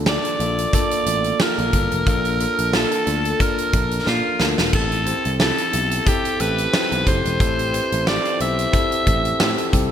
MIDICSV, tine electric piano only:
0, 0, Header, 1, 2, 480
1, 0, Start_track
1, 0, Tempo, 666667
1, 1489, Time_signature, 4, 2, 24, 8
1, 7140, End_track
2, 0, Start_track
2, 0, Title_t, "Tine electric piano"
2, 0, Program_c, 0, 4
2, 0, Control_c, 0, 64, 127
2, 0, Note_on_c, 0, 58, 87
2, 0, Note_on_c, 0, 62, 76
2, 0, Note_on_c, 0, 65, 79
2, 0, Note_on_c, 0, 69, 91
2, 49, Note_off_c, 0, 58, 0
2, 49, Note_on_c, 0, 58, 65
2, 53, Note_off_c, 0, 62, 0
2, 53, Note_on_c, 0, 62, 59
2, 56, Note_off_c, 0, 65, 0
2, 56, Note_on_c, 0, 65, 64
2, 58, Note_off_c, 0, 69, 0
2, 58, Note_on_c, 0, 69, 74
2, 226, Note_off_c, 0, 58, 0
2, 228, Note_off_c, 0, 62, 0
2, 229, Note_off_c, 0, 65, 0
2, 230, Note_off_c, 0, 69, 0
2, 287, Note_on_c, 0, 58, 70
2, 290, Note_on_c, 0, 62, 64
2, 295, Note_on_c, 0, 65, 65
2, 297, Note_on_c, 0, 69, 78
2, 465, Note_off_c, 0, 58, 0
2, 466, Note_off_c, 0, 62, 0
2, 469, Note_off_c, 0, 65, 0
2, 470, Note_off_c, 0, 69, 0
2, 528, Note_on_c, 0, 58, 87
2, 529, Note_on_c, 0, 62, 78
2, 532, Note_on_c, 0, 65, 80
2, 536, Note_on_c, 0, 69, 99
2, 705, Note_off_c, 0, 58, 0
2, 705, Note_off_c, 0, 62, 0
2, 707, Note_off_c, 0, 65, 0
2, 709, Note_off_c, 0, 69, 0
2, 768, Note_on_c, 0, 58, 63
2, 771, Note_on_c, 0, 62, 62
2, 773, Note_on_c, 0, 65, 60
2, 778, Note_on_c, 0, 69, 67
2, 945, Note_off_c, 0, 58, 0
2, 947, Note_off_c, 0, 62, 0
2, 948, Note_off_c, 0, 65, 0
2, 950, Note_off_c, 0, 69, 0
2, 1007, Note_on_c, 0, 58, 70
2, 1012, Note_on_c, 0, 62, 59
2, 1014, Note_on_c, 0, 65, 62
2, 1016, Note_on_c, 0, 69, 71
2, 1185, Note_off_c, 0, 58, 0
2, 1187, Note_off_c, 0, 62, 0
2, 1188, Note_off_c, 0, 65, 0
2, 1189, Note_off_c, 0, 69, 0
2, 1250, Note_on_c, 0, 58, 69
2, 1254, Note_on_c, 0, 62, 63
2, 1256, Note_on_c, 0, 65, 64
2, 1259, Note_on_c, 0, 69, 70
2, 1426, Note_off_c, 0, 58, 0
2, 1428, Note_off_c, 0, 62, 0
2, 1429, Note_off_c, 0, 65, 0
2, 1431, Note_off_c, 0, 69, 0
2, 1489, Note_on_c, 0, 58, 88
2, 1492, Note_on_c, 0, 62, 80
2, 1494, Note_on_c, 0, 65, 81
2, 1497, Note_on_c, 0, 69, 98
2, 1666, Note_off_c, 0, 58, 0
2, 1667, Note_off_c, 0, 62, 0
2, 1668, Note_off_c, 0, 65, 0
2, 1670, Note_off_c, 0, 69, 0
2, 1727, Note_on_c, 0, 58, 70
2, 1729, Note_on_c, 0, 62, 65
2, 1731, Note_on_c, 0, 65, 68
2, 1735, Note_on_c, 0, 69, 76
2, 1905, Note_off_c, 0, 58, 0
2, 1906, Note_off_c, 0, 62, 0
2, 1907, Note_off_c, 0, 65, 0
2, 1909, Note_off_c, 0, 69, 0
2, 1963, Note_on_c, 0, 58, 68
2, 1968, Note_on_c, 0, 62, 59
2, 1971, Note_on_c, 0, 65, 61
2, 1972, Note_on_c, 0, 69, 70
2, 2143, Note_off_c, 0, 58, 0
2, 2145, Note_off_c, 0, 62, 0
2, 2147, Note_off_c, 0, 65, 0
2, 2147, Note_off_c, 0, 69, 0
2, 2202, Note_on_c, 0, 58, 69
2, 2204, Note_on_c, 0, 62, 64
2, 2206, Note_on_c, 0, 65, 63
2, 2211, Note_on_c, 0, 69, 75
2, 2382, Note_off_c, 0, 58, 0
2, 2383, Note_off_c, 0, 62, 0
2, 2384, Note_off_c, 0, 65, 0
2, 2386, Note_off_c, 0, 69, 0
2, 2441, Note_on_c, 0, 58, 83
2, 2446, Note_on_c, 0, 62, 81
2, 2448, Note_on_c, 0, 65, 79
2, 2449, Note_on_c, 0, 70, 96
2, 2622, Note_off_c, 0, 58, 0
2, 2624, Note_off_c, 0, 62, 0
2, 2625, Note_off_c, 0, 65, 0
2, 2626, Note_off_c, 0, 70, 0
2, 2683, Note_on_c, 0, 58, 59
2, 2686, Note_on_c, 0, 62, 62
2, 2691, Note_on_c, 0, 65, 57
2, 2693, Note_on_c, 0, 69, 66
2, 2863, Note_off_c, 0, 58, 0
2, 2864, Note_off_c, 0, 62, 0
2, 2867, Note_off_c, 0, 65, 0
2, 2868, Note_off_c, 0, 69, 0
2, 2925, Note_on_c, 0, 58, 65
2, 2930, Note_on_c, 0, 62, 60
2, 2931, Note_on_c, 0, 65, 61
2, 2935, Note_on_c, 0, 70, 72
2, 3104, Note_off_c, 0, 58, 0
2, 3106, Note_off_c, 0, 62, 0
2, 3107, Note_off_c, 0, 65, 0
2, 3109, Note_off_c, 0, 70, 0
2, 3165, Note_on_c, 0, 58, 67
2, 3167, Note_on_c, 0, 62, 63
2, 3171, Note_on_c, 0, 65, 59
2, 3172, Note_on_c, 0, 69, 70
2, 3344, Note_off_c, 0, 58, 0
2, 3345, Note_off_c, 0, 62, 0
2, 3346, Note_off_c, 0, 65, 0
2, 3347, Note_off_c, 0, 69, 0
2, 3404, Note_on_c, 0, 60, 86
2, 3407, Note_on_c, 0, 64, 81
2, 3410, Note_on_c, 0, 67, 82
2, 3412, Note_on_c, 0, 69, 92
2, 3418, Control_c, 0, 64, 0
2, 3523, Control_c, 0, 64, 127
2, 3583, Note_off_c, 0, 60, 0
2, 3585, Note_off_c, 0, 64, 0
2, 3586, Note_off_c, 0, 67, 0
2, 3587, Note_off_c, 0, 69, 0
2, 3640, Note_on_c, 0, 60, 70
2, 3643, Note_on_c, 0, 64, 63
2, 3646, Note_on_c, 0, 67, 63
2, 3648, Note_on_c, 0, 72, 78
2, 3821, Note_off_c, 0, 60, 0
2, 3822, Note_off_c, 0, 64, 0
2, 3824, Note_off_c, 0, 67, 0
2, 3825, Note_off_c, 0, 72, 0
2, 3884, Note_on_c, 0, 60, 67
2, 3885, Note_on_c, 0, 64, 59
2, 3887, Note_on_c, 0, 67, 58
2, 3891, Note_on_c, 0, 69, 75
2, 4063, Note_off_c, 0, 60, 0
2, 4064, Note_off_c, 0, 64, 0
2, 4065, Note_off_c, 0, 67, 0
2, 4067, Note_off_c, 0, 69, 0
2, 4123, Note_on_c, 0, 60, 66
2, 4125, Note_on_c, 0, 64, 63
2, 4130, Note_on_c, 0, 67, 63
2, 4131, Note_on_c, 0, 69, 73
2, 4303, Note_off_c, 0, 60, 0
2, 4304, Note_off_c, 0, 64, 0
2, 4306, Note_off_c, 0, 67, 0
2, 4307, Note_off_c, 0, 69, 0
2, 4360, Note_on_c, 0, 60, 87
2, 4363, Note_on_c, 0, 64, 78
2, 4367, Note_on_c, 0, 67, 79
2, 4370, Note_on_c, 0, 69, 97
2, 4541, Note_off_c, 0, 60, 0
2, 4543, Note_off_c, 0, 64, 0
2, 4544, Note_off_c, 0, 67, 0
2, 4546, Note_off_c, 0, 69, 0
2, 4603, Note_on_c, 0, 60, 63
2, 4607, Note_on_c, 0, 64, 59
2, 4610, Note_on_c, 0, 67, 60
2, 4612, Note_on_c, 0, 69, 70
2, 4783, Note_off_c, 0, 60, 0
2, 4785, Note_off_c, 0, 64, 0
2, 4786, Note_off_c, 0, 67, 0
2, 4787, Note_off_c, 0, 69, 0
2, 4845, Note_on_c, 0, 60, 69
2, 4849, Note_on_c, 0, 64, 58
2, 4851, Note_on_c, 0, 67, 61
2, 4853, Note_on_c, 0, 72, 76
2, 5024, Note_off_c, 0, 60, 0
2, 5026, Note_off_c, 0, 64, 0
2, 5026, Note_off_c, 0, 67, 0
2, 5028, Note_off_c, 0, 72, 0
2, 5089, Note_on_c, 0, 60, 66
2, 5090, Note_on_c, 0, 64, 62
2, 5093, Note_on_c, 0, 67, 62
2, 5096, Note_on_c, 0, 69, 76
2, 5266, Note_off_c, 0, 60, 0
2, 5266, Note_off_c, 0, 64, 0
2, 5268, Note_off_c, 0, 67, 0
2, 5269, Note_off_c, 0, 69, 0
2, 5325, Note_on_c, 0, 60, 91
2, 5329, Note_on_c, 0, 64, 81
2, 5332, Note_on_c, 0, 67, 81
2, 5333, Note_on_c, 0, 69, 99
2, 5503, Note_off_c, 0, 60, 0
2, 5506, Note_off_c, 0, 64, 0
2, 5507, Note_off_c, 0, 67, 0
2, 5508, Note_off_c, 0, 69, 0
2, 5565, Note_on_c, 0, 60, 71
2, 5568, Note_on_c, 0, 64, 65
2, 5570, Note_on_c, 0, 67, 66
2, 5573, Note_on_c, 0, 71, 79
2, 5743, Note_off_c, 0, 60, 0
2, 5745, Note_off_c, 0, 64, 0
2, 5746, Note_off_c, 0, 67, 0
2, 5748, Note_off_c, 0, 71, 0
2, 5806, Note_on_c, 0, 60, 63
2, 5811, Note_on_c, 0, 64, 59
2, 5812, Note_on_c, 0, 67, 60
2, 5815, Note_on_c, 0, 69, 73
2, 5984, Note_off_c, 0, 60, 0
2, 5987, Note_off_c, 0, 64, 0
2, 5987, Note_off_c, 0, 67, 0
2, 5989, Note_off_c, 0, 69, 0
2, 6042, Note_on_c, 0, 60, 67
2, 6044, Note_on_c, 0, 64, 61
2, 6049, Note_on_c, 0, 67, 61
2, 6052, Note_on_c, 0, 72, 74
2, 6222, Note_off_c, 0, 60, 0
2, 6223, Note_off_c, 0, 64, 0
2, 6225, Note_off_c, 0, 67, 0
2, 6227, Note_off_c, 0, 72, 0
2, 6277, Note_on_c, 0, 60, 90
2, 6282, Note_on_c, 0, 64, 79
2, 6285, Note_on_c, 0, 67, 80
2, 6288, Note_on_c, 0, 69, 101
2, 6460, Note_off_c, 0, 60, 0
2, 6462, Note_off_c, 0, 64, 0
2, 6464, Note_off_c, 0, 67, 0
2, 6465, Note_off_c, 0, 69, 0
2, 6518, Note_on_c, 0, 60, 65
2, 6521, Note_on_c, 0, 64, 58
2, 6525, Note_on_c, 0, 67, 64
2, 6528, Note_on_c, 0, 69, 74
2, 6700, Note_off_c, 0, 60, 0
2, 6702, Note_off_c, 0, 64, 0
2, 6704, Note_off_c, 0, 67, 0
2, 6705, Note_off_c, 0, 69, 0
2, 6759, Note_on_c, 0, 60, 76
2, 6763, Note_on_c, 0, 64, 71
2, 6767, Note_on_c, 0, 67, 77
2, 6770, Note_on_c, 0, 69, 87
2, 6941, Note_off_c, 0, 60, 0
2, 6943, Note_off_c, 0, 64, 0
2, 6945, Note_off_c, 0, 67, 0
2, 6946, Note_off_c, 0, 69, 0
2, 7003, Note_on_c, 0, 60, 84
2, 7005, Note_on_c, 0, 64, 74
2, 7008, Note_on_c, 0, 67, 74
2, 7011, Note_on_c, 0, 69, 89
2, 7140, Note_off_c, 0, 60, 0
2, 7140, Note_off_c, 0, 64, 0
2, 7140, Note_off_c, 0, 67, 0
2, 7140, Note_off_c, 0, 69, 0
2, 7140, End_track
0, 0, End_of_file